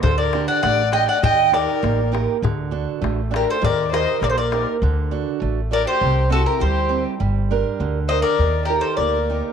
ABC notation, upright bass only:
X:1
M:2/4
L:1/8
Q:1/4=100
K:none
V:1 name="Upright bass" clef=bass
D,,2 A,,,2 | _E,,2 A,,,2 | D,,2 A,,,2 | _E,,2 _B,,,2 |
D,,2 A,,,2 | C,,2 D,,2 | G,,,2 D,,2 | _E,,2 D,,2 |]